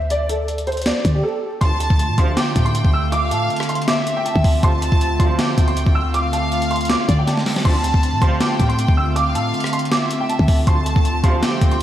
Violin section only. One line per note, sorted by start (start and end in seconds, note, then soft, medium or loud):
1.61 2.33 A5 loud
2.37 3.09 G5 medium
3.12 3.84 F5 loud
3.88 4.59 E5 medium
4.63 5.35 A5 loud
5.39 6.10 G5 medium
6.14 7.05 F5 loud
7.08 7.26 D5 medium
7.65 8.37 A5 loud
8.41 9.12 G5 medium
9.16 9.87 F5 loud
9.92 10.63 E5 medium
10.67 11.38 A5 loud
11.43 11.83 G5 medium